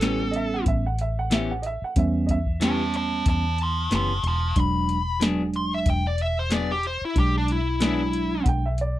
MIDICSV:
0, 0, Header, 1, 8, 480
1, 0, Start_track
1, 0, Tempo, 649562
1, 1451, Time_signature, 4, 2, 24, 8
1, 6645, End_track
2, 0, Start_track
2, 0, Title_t, "Upright piano"
2, 0, Program_c, 0, 0
2, 231, Note_on_c, 0, 75, 66
2, 260, Note_off_c, 0, 75, 0
2, 267, Note_on_c, 0, 76, 86
2, 380, Note_off_c, 0, 76, 0
2, 398, Note_on_c, 0, 78, 69
2, 493, Note_off_c, 0, 78, 0
2, 503, Note_on_c, 0, 76, 88
2, 618, Note_off_c, 0, 76, 0
2, 639, Note_on_c, 0, 78, 73
2, 733, Note_off_c, 0, 78, 0
2, 749, Note_on_c, 0, 76, 76
2, 861, Note_off_c, 0, 76, 0
2, 879, Note_on_c, 0, 78, 80
2, 973, Note_off_c, 0, 78, 0
2, 987, Note_on_c, 0, 76, 80
2, 1100, Note_off_c, 0, 76, 0
2, 1117, Note_on_c, 0, 78, 70
2, 1199, Note_on_c, 0, 75, 58
2, 1212, Note_off_c, 0, 78, 0
2, 1226, Note_off_c, 0, 75, 0
2, 1229, Note_on_c, 0, 76, 85
2, 1341, Note_off_c, 0, 76, 0
2, 1362, Note_on_c, 0, 78, 70
2, 1455, Note_off_c, 0, 78, 0
2, 1467, Note_on_c, 0, 76, 77
2, 1673, Note_on_c, 0, 75, 58
2, 1692, Note_off_c, 0, 76, 0
2, 1701, Note_off_c, 0, 75, 0
2, 1706, Note_on_c, 0, 76, 84
2, 1931, Note_off_c, 0, 76, 0
2, 6234, Note_on_c, 0, 78, 67
2, 6262, Note_off_c, 0, 78, 0
2, 6270, Note_on_c, 0, 79, 88
2, 6381, Note_off_c, 0, 79, 0
2, 6397, Note_on_c, 0, 76, 72
2, 6492, Note_off_c, 0, 76, 0
2, 6512, Note_on_c, 0, 74, 73
2, 6622, Note_off_c, 0, 74, 0
2, 6645, End_track
3, 0, Start_track
3, 0, Title_t, "Lead electric guitar"
3, 0, Program_c, 1, 29
3, 0, Note_on_c, 1, 69, 82
3, 471, Note_off_c, 1, 69, 0
3, 1947, Note_on_c, 1, 73, 64
3, 1953, Note_on_c, 1, 81, 62
3, 2174, Note_off_c, 1, 81, 0
3, 2180, Note_off_c, 1, 73, 0
3, 2189, Note_on_c, 1, 73, 71
3, 2194, Note_on_c, 1, 81, 78
3, 2403, Note_off_c, 1, 73, 0
3, 2416, Note_off_c, 1, 81, 0
3, 2431, Note_on_c, 1, 73, 70
3, 2435, Note_on_c, 1, 81, 81
3, 2645, Note_off_c, 1, 73, 0
3, 2656, Note_off_c, 1, 81, 0
3, 2675, Note_on_c, 1, 81, 69
3, 2682, Note_on_c, 1, 84, 78
3, 2888, Note_off_c, 1, 81, 0
3, 2898, Note_off_c, 1, 84, 0
3, 2919, Note_on_c, 1, 81, 65
3, 2925, Note_on_c, 1, 84, 75
3, 3129, Note_off_c, 1, 81, 0
3, 3141, Note_off_c, 1, 84, 0
3, 3158, Note_on_c, 1, 81, 70
3, 3163, Note_on_c, 1, 84, 74
3, 3369, Note_off_c, 1, 81, 0
3, 3380, Note_off_c, 1, 84, 0
3, 3399, Note_on_c, 1, 83, 88
3, 3851, Note_off_c, 1, 83, 0
3, 4110, Note_on_c, 1, 84, 81
3, 4226, Note_off_c, 1, 84, 0
3, 4245, Note_on_c, 1, 76, 80
3, 4340, Note_off_c, 1, 76, 0
3, 4357, Note_on_c, 1, 79, 80
3, 4470, Note_off_c, 1, 79, 0
3, 4486, Note_on_c, 1, 74, 74
3, 4581, Note_off_c, 1, 74, 0
3, 4599, Note_on_c, 1, 76, 72
3, 4711, Note_off_c, 1, 76, 0
3, 4724, Note_on_c, 1, 72, 80
3, 4819, Note_off_c, 1, 72, 0
3, 4836, Note_on_c, 1, 74, 87
3, 4949, Note_off_c, 1, 74, 0
3, 4962, Note_on_c, 1, 67, 84
3, 5058, Note_off_c, 1, 67, 0
3, 5076, Note_on_c, 1, 72, 84
3, 5189, Note_off_c, 1, 72, 0
3, 5210, Note_on_c, 1, 64, 81
3, 5303, Note_off_c, 1, 64, 0
3, 5316, Note_on_c, 1, 67, 78
3, 5429, Note_off_c, 1, 67, 0
3, 5450, Note_on_c, 1, 62, 67
3, 5543, Note_off_c, 1, 62, 0
3, 5556, Note_on_c, 1, 64, 70
3, 5776, Note_off_c, 1, 64, 0
3, 5802, Note_on_c, 1, 64, 73
3, 6252, Note_off_c, 1, 64, 0
3, 6645, End_track
4, 0, Start_track
4, 0, Title_t, "Clean electric guitar"
4, 0, Program_c, 2, 27
4, 6, Note_on_c, 2, 52, 75
4, 14, Note_on_c, 2, 59, 73
4, 18, Note_on_c, 2, 61, 80
4, 23, Note_on_c, 2, 67, 74
4, 160, Note_off_c, 2, 52, 0
4, 164, Note_off_c, 2, 59, 0
4, 166, Note_off_c, 2, 61, 0
4, 169, Note_off_c, 2, 67, 0
4, 964, Note_on_c, 2, 52, 73
4, 969, Note_on_c, 2, 59, 87
4, 974, Note_on_c, 2, 61, 86
4, 980, Note_on_c, 2, 67, 91
4, 1119, Note_off_c, 2, 52, 0
4, 1122, Note_off_c, 2, 59, 0
4, 1124, Note_off_c, 2, 61, 0
4, 1127, Note_off_c, 2, 67, 0
4, 1922, Note_on_c, 2, 52, 69
4, 1928, Note_on_c, 2, 59, 72
4, 1933, Note_on_c, 2, 61, 75
4, 1939, Note_on_c, 2, 67, 85
4, 2078, Note_off_c, 2, 52, 0
4, 2081, Note_off_c, 2, 59, 0
4, 2083, Note_off_c, 2, 61, 0
4, 2087, Note_off_c, 2, 67, 0
4, 2886, Note_on_c, 2, 52, 68
4, 2892, Note_on_c, 2, 59, 64
4, 2898, Note_on_c, 2, 61, 78
4, 2901, Note_on_c, 2, 67, 68
4, 3040, Note_off_c, 2, 52, 0
4, 3043, Note_off_c, 2, 59, 0
4, 3046, Note_off_c, 2, 61, 0
4, 3047, Note_off_c, 2, 67, 0
4, 3842, Note_on_c, 2, 54, 77
4, 3849, Note_on_c, 2, 59, 67
4, 3855, Note_on_c, 2, 62, 73
4, 3860, Note_on_c, 2, 68, 87
4, 3998, Note_off_c, 2, 54, 0
4, 4001, Note_off_c, 2, 59, 0
4, 4004, Note_off_c, 2, 62, 0
4, 4007, Note_off_c, 2, 68, 0
4, 4803, Note_on_c, 2, 54, 67
4, 4810, Note_on_c, 2, 59, 74
4, 4815, Note_on_c, 2, 62, 76
4, 4819, Note_on_c, 2, 68, 82
4, 4958, Note_off_c, 2, 54, 0
4, 4962, Note_off_c, 2, 59, 0
4, 4964, Note_off_c, 2, 62, 0
4, 4966, Note_off_c, 2, 68, 0
4, 5765, Note_on_c, 2, 54, 79
4, 5771, Note_on_c, 2, 59, 72
4, 5775, Note_on_c, 2, 62, 82
4, 5779, Note_on_c, 2, 68, 81
4, 5919, Note_off_c, 2, 54, 0
4, 5922, Note_off_c, 2, 59, 0
4, 5924, Note_off_c, 2, 62, 0
4, 5926, Note_off_c, 2, 68, 0
4, 6645, End_track
5, 0, Start_track
5, 0, Title_t, "Tine electric piano"
5, 0, Program_c, 3, 4
5, 14, Note_on_c, 3, 55, 66
5, 14, Note_on_c, 3, 59, 60
5, 15, Note_on_c, 3, 61, 76
5, 624, Note_off_c, 3, 55, 0
5, 624, Note_off_c, 3, 59, 0
5, 624, Note_off_c, 3, 61, 0
5, 1452, Note_on_c, 3, 55, 80
5, 1453, Note_on_c, 3, 59, 76
5, 1454, Note_on_c, 3, 61, 93
5, 1757, Note_off_c, 3, 55, 0
5, 1758, Note_off_c, 3, 59, 0
5, 1758, Note_off_c, 3, 61, 0
5, 1932, Note_on_c, 3, 55, 69
5, 1934, Note_on_c, 3, 59, 62
5, 1935, Note_on_c, 3, 61, 72
5, 2543, Note_off_c, 3, 55, 0
5, 2544, Note_off_c, 3, 59, 0
5, 2544, Note_off_c, 3, 61, 0
5, 3371, Note_on_c, 3, 54, 68
5, 3373, Note_on_c, 3, 56, 62
5, 3373, Note_on_c, 3, 62, 72
5, 3677, Note_off_c, 3, 54, 0
5, 3677, Note_off_c, 3, 56, 0
5, 3678, Note_off_c, 3, 62, 0
5, 3851, Note_on_c, 3, 62, 68
5, 3852, Note_on_c, 3, 56, 64
5, 3854, Note_on_c, 3, 54, 65
5, 4462, Note_off_c, 3, 62, 0
5, 4463, Note_off_c, 3, 56, 0
5, 4464, Note_off_c, 3, 54, 0
5, 5289, Note_on_c, 3, 54, 68
5, 5289, Note_on_c, 3, 56, 66
5, 5289, Note_on_c, 3, 62, 76
5, 5595, Note_off_c, 3, 54, 0
5, 5595, Note_off_c, 3, 56, 0
5, 5595, Note_off_c, 3, 62, 0
5, 5768, Note_on_c, 3, 62, 72
5, 5769, Note_on_c, 3, 54, 68
5, 5770, Note_on_c, 3, 56, 59
5, 6381, Note_off_c, 3, 54, 0
5, 6381, Note_off_c, 3, 62, 0
5, 6382, Note_off_c, 3, 56, 0
5, 6645, End_track
6, 0, Start_track
6, 0, Title_t, "Fingered electric bass"
6, 0, Program_c, 4, 33
6, 0, Note_on_c, 4, 33, 90
6, 459, Note_off_c, 4, 33, 0
6, 490, Note_on_c, 4, 33, 85
6, 1310, Note_off_c, 4, 33, 0
6, 1451, Note_on_c, 4, 40, 91
6, 2381, Note_off_c, 4, 40, 0
6, 2410, Note_on_c, 4, 40, 84
6, 2861, Note_off_c, 4, 40, 0
6, 2892, Note_on_c, 4, 30, 71
6, 3107, Note_off_c, 4, 30, 0
6, 3127, Note_on_c, 4, 28, 81
6, 3345, Note_off_c, 4, 28, 0
6, 3371, Note_on_c, 4, 28, 90
6, 4301, Note_off_c, 4, 28, 0
6, 4330, Note_on_c, 4, 28, 84
6, 5150, Note_off_c, 4, 28, 0
6, 5288, Note_on_c, 4, 35, 88
6, 6220, Note_off_c, 4, 35, 0
6, 6250, Note_on_c, 4, 35, 80
6, 6645, Note_off_c, 4, 35, 0
6, 6645, End_track
7, 0, Start_track
7, 0, Title_t, "Muted fingered electric bass strokes"
7, 1344, Note_on_c, 9, 29, 36
7, 1418, Note_off_c, 9, 29, 0
7, 5183, Note_on_c, 9, 29, 33
7, 5257, Note_off_c, 9, 29, 0
7, 6645, End_track
8, 0, Start_track
8, 0, Title_t, "Drums"
8, 8, Note_on_c, 9, 42, 76
8, 17, Note_on_c, 9, 38, 100
8, 82, Note_off_c, 9, 42, 0
8, 91, Note_off_c, 9, 38, 0
8, 247, Note_on_c, 9, 42, 58
8, 321, Note_off_c, 9, 42, 0
8, 488, Note_on_c, 9, 36, 102
8, 488, Note_on_c, 9, 42, 74
8, 562, Note_off_c, 9, 36, 0
8, 562, Note_off_c, 9, 42, 0
8, 728, Note_on_c, 9, 42, 60
8, 802, Note_off_c, 9, 42, 0
8, 968, Note_on_c, 9, 42, 80
8, 977, Note_on_c, 9, 38, 103
8, 1042, Note_off_c, 9, 42, 0
8, 1051, Note_off_c, 9, 38, 0
8, 1206, Note_on_c, 9, 42, 60
8, 1280, Note_off_c, 9, 42, 0
8, 1448, Note_on_c, 9, 42, 88
8, 1449, Note_on_c, 9, 36, 100
8, 1522, Note_off_c, 9, 42, 0
8, 1523, Note_off_c, 9, 36, 0
8, 1689, Note_on_c, 9, 36, 73
8, 1690, Note_on_c, 9, 42, 60
8, 1763, Note_off_c, 9, 36, 0
8, 1764, Note_off_c, 9, 42, 0
8, 1819, Note_on_c, 9, 36, 71
8, 1893, Note_off_c, 9, 36, 0
8, 1928, Note_on_c, 9, 42, 82
8, 1937, Note_on_c, 9, 38, 101
8, 2002, Note_off_c, 9, 42, 0
8, 2011, Note_off_c, 9, 38, 0
8, 2170, Note_on_c, 9, 42, 59
8, 2244, Note_off_c, 9, 42, 0
8, 2407, Note_on_c, 9, 42, 78
8, 2409, Note_on_c, 9, 36, 104
8, 2481, Note_off_c, 9, 42, 0
8, 2483, Note_off_c, 9, 36, 0
8, 2648, Note_on_c, 9, 42, 60
8, 2722, Note_off_c, 9, 42, 0
8, 2889, Note_on_c, 9, 42, 80
8, 2897, Note_on_c, 9, 38, 101
8, 2962, Note_off_c, 9, 42, 0
8, 2971, Note_off_c, 9, 38, 0
8, 3131, Note_on_c, 9, 42, 60
8, 3204, Note_off_c, 9, 42, 0
8, 3369, Note_on_c, 9, 42, 78
8, 3370, Note_on_c, 9, 36, 106
8, 3443, Note_off_c, 9, 42, 0
8, 3444, Note_off_c, 9, 36, 0
8, 3612, Note_on_c, 9, 42, 54
8, 3686, Note_off_c, 9, 42, 0
8, 3852, Note_on_c, 9, 42, 77
8, 3860, Note_on_c, 9, 38, 107
8, 3925, Note_off_c, 9, 42, 0
8, 3934, Note_off_c, 9, 38, 0
8, 4091, Note_on_c, 9, 42, 59
8, 4164, Note_off_c, 9, 42, 0
8, 4329, Note_on_c, 9, 36, 96
8, 4329, Note_on_c, 9, 42, 74
8, 4403, Note_off_c, 9, 36, 0
8, 4403, Note_off_c, 9, 42, 0
8, 4567, Note_on_c, 9, 42, 57
8, 4641, Note_off_c, 9, 42, 0
8, 4807, Note_on_c, 9, 42, 79
8, 4816, Note_on_c, 9, 38, 105
8, 4881, Note_off_c, 9, 42, 0
8, 4890, Note_off_c, 9, 38, 0
8, 5050, Note_on_c, 9, 42, 61
8, 5124, Note_off_c, 9, 42, 0
8, 5290, Note_on_c, 9, 36, 96
8, 5290, Note_on_c, 9, 42, 81
8, 5364, Note_off_c, 9, 36, 0
8, 5364, Note_off_c, 9, 42, 0
8, 5530, Note_on_c, 9, 42, 61
8, 5604, Note_off_c, 9, 42, 0
8, 5768, Note_on_c, 9, 42, 78
8, 5777, Note_on_c, 9, 38, 99
8, 5842, Note_off_c, 9, 42, 0
8, 5850, Note_off_c, 9, 38, 0
8, 6011, Note_on_c, 9, 42, 62
8, 6085, Note_off_c, 9, 42, 0
8, 6249, Note_on_c, 9, 36, 101
8, 6250, Note_on_c, 9, 42, 84
8, 6323, Note_off_c, 9, 36, 0
8, 6324, Note_off_c, 9, 42, 0
8, 6488, Note_on_c, 9, 42, 60
8, 6562, Note_off_c, 9, 42, 0
8, 6645, End_track
0, 0, End_of_file